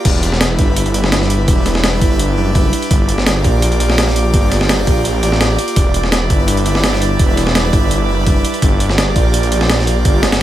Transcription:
0.05 E1 G3 D4 E4 B4 D5 D6, kick, closed hi-hat, crash
0.23 closed hi-hat
0.32 G3 D4 E4 B4, snare
0.41 snare, closed hi-hat
0.59 G1, kick, closed hi-hat
0.77 closed hi-hat
0.86 closed hi-hat
0.94 G3 D4 E4 B4, closed hi-hat
1.04 snare
1.12 snare, closed hi-hat
1.22 snare
1.30 closed hi-hat
1.48 E1 G3 D4 E4 B4, kick, closed hi-hat
1.66 snare, closed hi-hat
1.75 G3 D4 E4 B4, snare
1.84 snare, closed hi-hat
2.01 G1, kick, closed hi-hat
2.19 closed hi-hat
2.37 F#1 G3 D4 E4 B4
2.55 kick, closed hi-hat
2.73 closed hi-hat
2.82 closed hi-hat
2.91 G1 A#3 F4 G4 D5, kick, closed hi-hat
3.09 closed hi-hat
3.18 A#3 F4 G4 D5, snare
3.27 snare, closed hi-hat
3.44 A#1, kick, closed hi-hat
3.62 closed hi-hat
3.72 closed hi-hat
3.80 A#3 F4 G4 D5, closed hi-hat
3.90 snare
3.98 snare, closed hi-hat
4.07 snare
4.16 closed hi-hat
4.33 G1 A#3 F4 G4 D5, kick, closed hi-hat
4.52 snare, closed hi-hat
4.61 A#3 F4 G4 D5, snare
4.69 snare, closed hi-hat
4.87 A#1, kick, closed hi-hat
5.05 closed hi-hat
5.23 A1 A#3 F4 G4 D5, closed hi-hat
5.32 A#3 F4 G4 D5, snare
5.41 snare, closed hi-hat
5.59 closed hi-hat
5.68 closed hi-hat
5.76 E1 G3 D4 E4 B4, kick, closed hi-hat
5.94 closed hi-hat
6.04 G3 D4 E4 B4, snare
6.12 snare, closed hi-hat
6.30 G1, kick, closed hi-hat
6.48 closed hi-hat
6.57 closed hi-hat
6.66 G3 D4 E4 B4, closed hi-hat
6.75 snare
6.84 snare, closed hi-hat
6.93 snare
7.02 closed hi-hat
7.19 E1 G3 D4 E4 B4, kick, closed hi-hat
7.37 snare, closed hi-hat
7.46 G3 D4 E4 B4, snare
7.55 snare, closed hi-hat
7.73 G1, kick, closed hi-hat
7.91 closed hi-hat
8.09 F#1 G3 D4 E4 B4
8.27 kick, closed hi-hat
8.45 closed hi-hat
8.54 closed hi-hat
8.62 G1 A#3 F4 G4 D5, kick, closed hi-hat
8.80 closed hi-hat
8.89 A#3 F4 G4 D5, snare
8.98 snare, closed hi-hat
9.16 A#1, kick, closed hi-hat
9.34 closed hi-hat
9.43 closed hi-hat
9.52 A#3 F4 G4 D5, closed hi-hat
9.61 snare
9.70 snare, closed hi-hat
9.79 snare
9.87 closed hi-hat
10.05 G1 A#3 F4 G4 D5, kick, closed hi-hat
10.23 snare, closed hi-hat
10.32 A#3 F4 G4 D5, snare, closed hi-hat

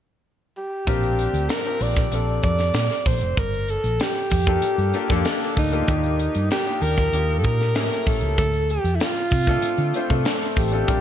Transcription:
0.57 G4
0.87 A#1 C4 D4 F4 G4 A#4, kick, closed hi-hat, shaker
1.03 closed hi-hat, shaker
1.19 closed hi-hat
1.33 D2, closed hi-hat, shaker
1.49 A#4, snare, closed hi-hat, shaker
1.65 C4 D4 F4 G4 A#4, closed hi-hat, shaker
1.80 A#1 D5, open hi-hat
1.96 kick, snare, closed hi-hat, shaker
2.11 A#1 C4 D4 F4 G4 A4, closed hi-hat, shaker
2.29 shaker
2.43 F2 D5, kick, closed hi-hat, shaker
2.58 snare, closed hi-hat, shaker
2.74 A#2, snare, closed hi-hat, shaker
2.90 snare, closed hi-hat, shaker
3.05 A#1 C5, kick, open hi-hat
3.21 F1, closed hi-hat, shaker
3.37 G1 A#4, kick, closed hi-hat, shaker
3.52 closed hi-hat, shaker
3.68 A4, closed hi-hat
3.84 A#1, closed hi-hat, shaker
4.00 G4, snare, closed hi-hat, shaker
4.16 shaker
4.30 F2, kick, open hi-hat
4.46 A#3 D4 F4 G4 A4, kick, closed hi-hat, shaker
4.62 muted fingered electric bass stroke, closed hi-hat, shaker
4.78 G2, closed hi-hat, shaker
4.93 A#3 D4 F4 G4 A4, closed hi-hat, shaker
5.09 F2 A#3 D4 F4 G4 A4, kick, snare, closed hi-hat, shaker
5.25 snare, closed hi-hat, shaker
5.41 snare, closed hi-hat, shaker
5.56 D2 D#4, kick, open hi-hat
5.72 A#3 D4 F4 G4 A4, closed hi-hat, shaker
5.87 D#2 A#3 D#4 G4 D5, kick, closed hi-hat, shaker
6.04 closed hi-hat, shaker
6.19 closed hi-hat
6.35 G2, closed hi-hat, shaker
6.51 G4, snare, closed hi-hat, shaker
6.66 A#3 D4 D#4 F4 G4, closed hi-hat, shaker
6.82 D#2 A#4, open hi-hat
6.97 kick, snare, closed hi-hat, shaker
7.13 D#2 A#3 D4 D#4 F4 G4, closed hi-hat, shaker
7.29 closed hi-hat, shaker
7.38 A4
7.44 A#2 A#4, kick, closed hi-hat, shaker
7.60 snare, closed hi-hat, shaker
7.75 A2 A#3 C#4 E4 G4 G#4, snare, closed hi-hat, shaker
7.83 A3
7.92 snare, shaker
8.06 A#1 A4, kick, open hi-hat
8.22 C#2, closed hi-hat, shaker
8.38 D2 A4, kick, closed hi-hat, shaker
8.54 closed hi-hat, shaker
8.70 G4, closed hi-hat
8.84 F2, closed hi-hat, shaker
8.95 E4
9.00 F4, snare, closed hi-hat, shaker
9.16 closed hi-hat, shaker
9.31 C3, kick, open hi-hat
9.46 A3 C4 D4 F4 A4, kick, snare, closed hi-hat, shaker
9.62 muted fingered electric bass stroke, closed hi-hat, shaker
9.78 D3, closed hi-hat, shaker
9.94 A3 C4 D4 F4 C5, closed hi-hat, shaker
10.10 C3 A3 C4 D4 F4 A4, kick, closed hi-hat, shaker
10.25 snare, closed hi-hat, shaker
10.42 snare, shaker
10.56 A1 G4, kick, open hi-hat
10.72 A3 C4 D4 F4 A4, closed hi-hat, shaker
10.87 A#1 G3 C4 D4 F4 A#4, kick, closed hi-hat, shaker

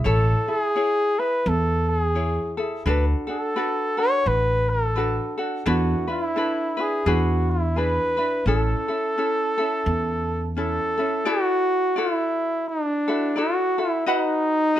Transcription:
0.04 A1 E4 A4 C#5
0.48 E4 G#4
0.76 E4 G#4 C#5
1.19 E4 B4
1.46 E2 A4
1.90 G#4
2.15 E4 G#4 C#5
2.57 E4 G#4 A4
2.85 D2 D4 F#4 A4 B4
2.90 B4
3.27 D4 F#4 A4
3.56 D4 F#4 A4 B4
3.97 D4 F#4 A4 C#5
4.26 A1 B4
4.69 A4
4.96 D4 F#4 A4 B4
5.38 D4 F#4 A4
5.66 E2 D4 E4 F#4 A4 B4
6.08 D4 E4 B4
6.36 D4 E4 A4 B4
6.77 D4 E4 G#4 B4
7.06 E2 D4 E4 F#4 G#4 B4
7.51 E4
7.76 D4 E4 G#4 B4
8.17 D4 E4 B4
8.46 A1 C#4 E4 A4
8.88 C#4 E4 A4
9.18 C#4 E4 A4
9.58 C#4 E4 A4
9.86 E2
10.57 C#4 E4 A4
10.98 C#4 E4 A4
11.25 E4 F#4 A4 D5
11.96 E4 F#4 A4 D5
12.68 D4
13.08 E4 F#4 A4
13.36 E4 F#4 A4 D5
13.78 E4 F#4 A4
14.06 D#4 F#4 B4 D#5 F#5
14.76 F#4 D#5

